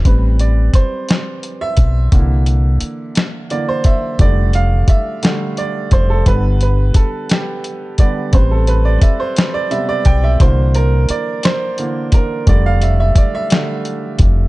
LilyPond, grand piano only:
<<
  \new Staff \with { instrumentName = "Grand piano" } { \time 6/8 \key a \minor \tempo 4. = 58 r8 d''8 c''4~ c''16 e''8.~ | e''8. r4 r16 d''16 c''16 e''8 | d''8 f''8 e''4 d''8 c''16 a'16 | b'8 b'8 a'8 g'8 r8 d''8 |
c''16 a'16 b'16 d''16 e''16 c''8 d''16 e''16 d''16 g''16 e''16 | c''8 bes'8 d''8 c''4 bes'8 | d''16 f''16 e''16 e''16 d''16 e''4. r16 | }
  \new Staff \with { instrumentName = "Grand piano" } { \clef bass \time 6/8 \key a \minor <g c' b'>2. | <d e bes>2 <d e bes>8 r8 | <d g a>4. <d g a>8 r4 | <d g b>2~ <d g b>8 <d g b>8 |
<g c' b'>2 <c g b>8 r8 | <d e bes>4. r8 <d e bes>8 r8 | <d g a>8 r4 <d g a>8 r4 | }
>>